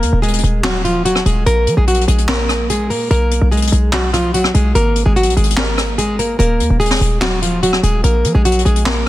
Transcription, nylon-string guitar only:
0.00 0.21 A#3 medium
0.00 0.20 A#4 medium
0.22 0.62 G#3 medium
0.22 0.61 G#4 medium
0.63 0.83 F#3 medium
0.63 0.82 F#4 medium
0.85 1.04 F3 medium
0.85 1.03 F4 medium
1.05 1.24 F#3 medium
1.05 1.24 F#4 medium
1.26 1.45 G#3 medium
1.26 1.45 G#4 medium
1.46 1.76 A#3 medium
1.46 1.75 A#4 loud
1.77 1.87 G#3 medium
1.77 1.87 G#4 medium
1.88 2.07 F#3 medium
1.88 2.06 F#4 medium
2.08 2.27 G#3 medium
2.08 2.27 G#4 medium
2.29 2.68 A#3 medium
2.29 2.67 A#4 medium
2.70 2.89 G#3 medium
2.70 2.89 G#4 medium
2.90 3.09 A#3 medium
2.90 3.09 A#4 medium
3.11 3.50 A#3 medium
3.11 3.49 A#4 medium
3.51 3.91 G#3 medium
3.51 3.90 G#4 medium
3.93 4.12 F#3 medium
3.93 4.12 F#4 medium
4.13 4.33 F3 medium
4.13 4.32 F4 medium
4.34 4.53 F#3 medium
4.34 4.53 F#4 medium
4.55 4.74 G#3 medium
4.55 4.73 G#4 medium
4.75 5.05 A#3 medium
4.75 5.04 A#4 loud
5.06 5.16 G#3 medium
5.06 5.15 G#4 medium
5.16 5.35 F#3 medium
5.16 5.35 F#4 medium
5.37 5.56 G#3 medium
5.37 5.56 G#4 medium
5.58 5.96 A#3 medium
5.58 5.96 A#4 medium
5.98 6.18 G#3 medium
5.98 6.17 G#4 medium
6.19 6.38 A#3 medium
6.19 6.38 A#4 medium
6.39 6.78 A#3 medium
6.39 6.78 A#4 loud
6.80 7.19 G#3 medium
6.80 7.19 G#4 medium
7.21 7.40 F#3 medium
7.21 7.40 F#4 medium
7.42 7.61 F3 medium
7.42 7.61 F4 medium
7.63 7.82 F#3 medium
7.63 7.82 F#4 medium
7.84 8.03 G#3 medium
7.84 8.02 G#4 medium
8.04 8.33 A#3 medium
8.04 8.33 A#4 loud
8.35 8.45 G#3 medium
8.35 8.44 G#4 medium
8.45 8.64 F#3 medium
8.45 8.64 F#4 medium
8.65 8.85 G#3 medium
8.65 8.84 G#4 medium
8.86 9.08 A#3 medium
8.86 9.08 A#4 medium

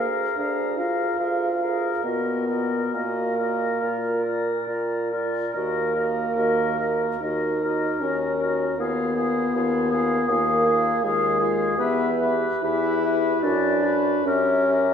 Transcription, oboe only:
0.00 0.38 A#4 soft
0.39 0.78 A#4 soft
0.79 1.18 A#4 soft
1.19 1.49 A#4 soft
1.61 2.03 A#4 soft
2.04 2.47 A#4 soft
2.47 2.92 A#4 soft
2.94 3.36 A#4 soft
3.37 3.80 A#4 soft
3.80 4.23 A#4 soft
4.24 4.66 A#4 soft
4.66 5.10 A#4 soft
5.11 5.52 A#4 soft
5.53 5.93 A#4 soft
5.94 6.35 A#4 soft
6.35 6.77 A#4 soft
6.79 7.21 A#4 soft
7.22 7.62 A#4 soft
7.64 8.01 A#4 soft
8.04 8.41 A#4 soft
8.42 8.79 A#4 soft
8.80 9.15 G#4 soft
9.16 9.53 G#4 soft
9.54 9.91 G#4 soft
9.91 10.27 G#4 soft
10.28 10.64 G#4 soft
10.65 11.01 G#4 soft
11.02 11.38 G#4 soft
11.39 11.77 G#4 soft
11.79 12.08 B4 soft
12.20 12.62 B4 soft
12.64 13.03 B4 soft
13.05 13.42 B4 medium
13.43 13.83 B4 soft
13.85 14.25 B4 soft
14.27 14.69 A#4 soft
14.72 14.94 A#4 soft

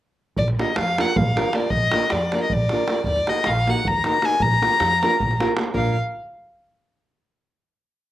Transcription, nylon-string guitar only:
0.59 0.71 A#3 medium
0.59 0.71 D4 medium
0.59 0.71 F4 medium
0.59 0.71 A#4 medium
0.98 1.10 A#3 medium
0.98 1.10 D4 medium
0.98 1.11 F4 medium
0.98 1.11 A#4 medium
1.35 1.47 A#3 medium
1.35 1.48 D4 medium
1.35 1.48 F4 medium
1.35 1.48 A#4 medium
1.53 1.65 A#3 medium
1.53 1.65 D4 soft
1.53 1.66 F4 soft
1.53 1.66 A#4 soft
1.92 2.04 A#3 medium
1.92 2.05 D4 medium
1.92 2.05 F4 soft
1.92 2.05 A#4 medium
2.33 2.45 A#3 medium
2.33 2.45 D4 medium
2.33 2.46 F4 medium
2.33 2.46 A#4 medium
2.72 2.83 A#3 medium
2.72 2.83 D4 medium
2.72 2.83 F4 medium
2.72 2.84 A#4 medium
2.88 2.99 A#3 medium
2.88 3.00 D4 soft
2.88 3.00 F4 soft
2.88 3.00 A#4 soft
3.27 3.39 A#3 medium
3.27 3.39 D#4 medium
3.27 3.40 F#4 medium
3.27 3.40 A#4 medium
3.67 3.79 A#3 medium
3.67 3.79 D#4 medium
3.67 3.80 F#4 medium
3.67 3.80 A#4 medium
4.05 4.17 A#3 medium
4.05 4.17 D#4 medium
4.05 4.17 F#4 medium
4.05 4.18 A#4 medium
4.22 4.34 A#3 soft
4.22 4.34 D#4 soft
4.22 4.34 F#4 soft
4.22 4.35 A#4 medium
4.62 4.74 A#3 medium
4.62 4.74 D4 medium
4.62 4.74 F4 medium
4.62 4.74 A#4 medium
5.02 5.14 A#3 medium
5.02 5.14 D4 medium
5.02 5.15 F4 medium
5.02 5.15 A#4 medium
5.40 5.51 A#3 medium
5.40 5.52 D4 medium
5.40 5.52 F4 medium
5.40 5.52 A#4 medium
5.56 5.68 A#3 medium
5.56 5.69 D4 medium
5.56 5.69 F4 soft
5.56 5.69 A#4 medium
5.74 5.95 A#3 medium
5.74 5.96 D4 medium
5.74 5.95 F4 medium
5.74 5.95 A#4 medium

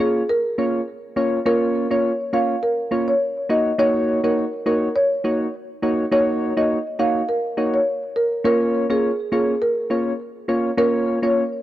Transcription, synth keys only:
0.00 0.23 A#3 medium
0.00 0.23 C#4 medium
0.00 0.23 F4 medium
0.00 0.23 C#5 medium
0.58 0.81 A#3 medium
0.58 0.81 C#4 medium
0.58 0.81 F4 medium
0.58 0.81 C#5 medium
1.16 1.39 A#3 medium
1.16 1.39 C#4 medium
1.16 1.39 F4 medium
1.16 1.39 C#5 medium
1.45 1.87 A#3 medium
1.45 1.87 C#4 medium
1.45 1.87 F4 medium
1.45 1.87 C#5 loud
1.90 2.12 A#3 medium
1.90 2.12 C#4 medium
1.90 2.12 F4 medium
1.90 2.12 C#5 medium
2.33 2.56 A#3 medium
2.33 2.56 C#4 medium
2.33 2.56 F4 medium
2.33 2.56 C#5 medium
2.91 3.14 A#3 medium
2.91 3.14 C#4 medium
2.91 3.14 F4 medium
2.91 3.14 C#5 medium
3.49 3.72 A#3 medium
3.49 3.72 D#4 medium
3.49 3.72 F#4 medium
3.49 3.72 C#5 medium
3.78 4.20 A#3 loud
3.78 4.20 D#4 medium
3.78 4.20 F#4 medium
3.78 4.20 C#5 loud
4.24 4.45 A#3 medium
4.24 4.45 D#4 medium
4.24 4.45 F#4 medium
4.24 4.45 C#5 medium
4.66 4.89 A#3 medium
4.66 4.89 D#4 medium
4.66 4.89 F#4 medium
4.66 4.89 C#5 medium
5.24 5.47 A#3 medium
5.24 5.47 D#4 medium
5.24 5.47 F#4 medium
5.24 5.47 C#5 medium
5.82 6.05 A#3 medium
5.82 6.05 D#4 medium
5.82 6.05 F#4 medium
5.82 6.05 C#5 medium
6.12 6.53 A#3 medium
6.12 6.53 D#4 medium
6.12 6.53 F#4 medium
6.12 6.53 C#5 loud
6.57 6.78 A#3 medium
6.57 6.78 D#4 medium
6.57 6.78 F#4 medium
6.57 6.78 C#5 medium
6.99 7.22 A#3 medium
6.99 7.22 D#4 medium
6.99 7.22 F#4 medium
6.99 7.22 C#5 medium
7.57 7.80 A#3 medium
7.57 7.80 D#4 medium
7.57 7.80 F#4 medium
7.57 7.80 C#5 medium
8.44 8.86 A#3 medium
8.44 8.86 C#4 medium
8.44 8.86 F4 medium
8.44 8.86 C#5 loud
8.90 9.11 A#3 medium
8.90 9.11 C#4 medium
8.90 9.11 F4 medium
8.90 9.11 C#5 medium
9.32 9.55 A#3 medium
9.32 9.55 C#4 medium
9.32 9.55 F4 medium
9.32 9.55 C#5 medium
9.90 10.13 A#3 medium
9.90 10.13 C#4 medium
9.90 10.13 F4 medium
9.90 10.13 C#5 medium
10.48 10.71 A#3 medium
10.48 10.71 C#4 medium
10.48 10.71 F4 medium
10.48 10.71 C#5 medium
10.77 11.19 A#3 medium
10.77 11.19 C#4 medium
10.77 11.19 F4 medium
10.77 11.19 C#5 loud
11.23 11.44 A#3 medium
11.23 11.44 C#4 medium
11.23 11.44 F4 medium
11.23 11.44 C#5 medium

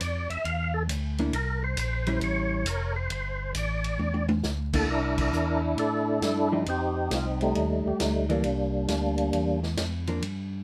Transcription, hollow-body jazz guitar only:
1.19 1.32 A#3 medium
1.19 1.33 D4 medium
1.19 1.33 E4 medium
2.07 2.64 G3 medium
2.07 2.64 C#4 medium
2.07 2.64 E4 medium
4.74 4.87 A#3 medium
4.74 4.88 D4 medium
4.74 4.88 E4 medium
6.52 6.65 F3 medium
6.52 6.65 A3 medium
6.52 6.66 D#4 medium
6.52 6.66 G4 medium
8.29 8.43 E3 medium
8.29 8.44 A#3 medium
8.29 8.44 D4 medium
10.08 10.21 F3 medium
10.08 10.22 A#3 medium
10.08 10.22 D4 medium

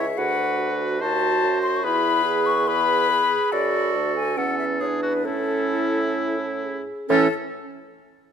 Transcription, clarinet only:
0.17 0.97 F#4 medium
1.01 1.85 F#4 medium
1.84 2.67 G#4 medium
2.67 3.51 G#4 medium
3.52 4.39 F#4 medium
4.37 4.82 C#4 medium
4.81 5.25 D4 medium
5.25 6.83 C#4 medium
7.09 7.27 C#4 loud

